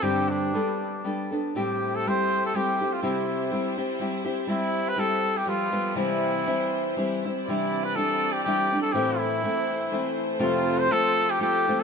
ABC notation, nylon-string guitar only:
X:1
M:3/4
L:1/8
Q:"Swing" 1/4=122
K:C
V:1 name="Nylon-string guitar"
[G,,D,G,CDG]2 [G,B,DA]2 [G,B,DA] [B,DA] | [A,,G,CEG]2 [G,CEG]2 [G,CEG] [CEG] | [C,G,CEG]2 [G,CEG] [CEG] [G,CEG] [CEG] | [G,CEG]2 [G,CEG]2 [F,G,B,G] [F,G,B,G] |
[C,E,G,CE]2 [E,G,CE]2 [E,G,CE] [G,CE] | [C,E,G,DE]2 [E,G,DE]2 [E,G,DE] [G,DE] | [A,,E,A,CE]2 [E,A,CE]2 [E,A,CE]2 | [F,,C,F,A,CF]2 [F,A,CF]2 [F,A,CF] [F,A,CF] |]